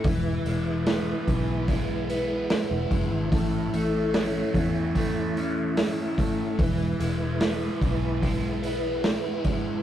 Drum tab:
HH |oooooooo|oooooooo|oooooooo|
SD |--o---o-|--o---o-|--o---o-|
BD |o--oo--o|o--oo--o|o--oo--o|